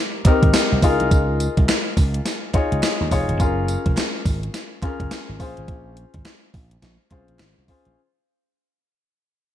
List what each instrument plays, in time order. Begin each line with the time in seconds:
Already playing: grand piano C4 D#4 G4 A#4
0.25 grand piano C4 D#4 G4 A#4, muted slap bass stroke, kick, clap, closed hi-hat
0.43 slap bass G#1, kick, closed hi-hat
0.54 snare, clap, closed hi-hat, tambourine
0.72 slap bass C2
0.82 slap bass C#2, grand piano D#4 F4 G#4 A#4, kick, open hi-hat, tambourine
1.00 slap bass C2, closed hi-hat
1.11 slap bass C#2, kick, closed hi-hat, tambourine
1.40 closed hi-hat, tambourine
1.57 slap bass C2, kick, closed hi-hat
1.68 snare, clap, closed hi-hat, tambourine
1.97 slap bass C#2, kick, open hi-hat, tambourine
2.14 closed hi-hat
2.26 snare, closed hi-hat, tambourine
2.54 grand piano D#4 F4 G#4 C#5, muted slap bass stroke, kick, clap, closed hi-hat
2.72 slap bass C#2, closed hi-hat
2.83 snare, clap, closed hi-hat, tambourine
3.01 slap bass D#2
3.11 slap bass F1, grand piano D#4 F4 G#4 C#5, kick, open hi-hat, tambourine
3.29 slap bass D#1, closed hi-hat
3.40 slap bass F#1, grand piano C#4 F4 G#4 A#4, kick, closed hi-hat, tambourine
3.68 closed hi-hat, tambourine
3.86 slap bass F1, kick, closed hi-hat
3.97 snare, clap, closed hi-hat, tambourine
4.26 slap bass G#1, kick, open hi-hat, tambourine
4.43 closed hi-hat
4.54 snare, closed hi-hat, tambourine
4.82 grand piano C#4 F4 G#4 A#4, muted slap bass stroke, kick, clap, closed hi-hat
5.00 slap bass F#1, kick, closed hi-hat
5.11 snare, clap, closed hi-hat, tambourine
5.29 slap bass G#1
5.39 slap bass A#1, grand piano C#4 F4 G#4 C5, kick, open hi-hat, tambourine
5.57 slap bass G#1, closed hi-hat
5.68 slap bass A#1, kick, closed hi-hat
5.97 closed hi-hat
6.14 slap bass G#1, kick, closed hi-hat
6.25 snare, clap, closed hi-hat
6.54 slap bass A#1, kick, open hi-hat
6.71 closed hi-hat
6.82 slap bass A#1, snare, closed hi-hat
7.11 slap bass C2, grand piano C#4 F4 G#4 C5, kick, clap, closed hi-hat
7.28 slap bass A#1, closed hi-hat
7.39 slap bass G#1, snare, clap, closed hi-hat
7.58 slap bass C2
7.68 grand piano C#4 F4 G#4 C5, kick, open hi-hat
7.85 slap bass A#1, closed hi-hat